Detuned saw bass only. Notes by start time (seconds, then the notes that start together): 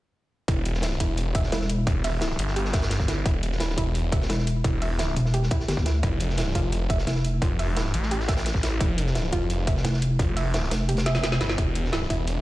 0.48 E1
1.00 E1
1.87 E1
2.39 G1
3.26 E1
3.78 E1
4.64 E1
6.03 F1
6.55 F1
7.42 F1
7.94 A1
8.81 F1
9.33 F1
10.19 F1
11.41 G1
11.58 E1
12.10 E1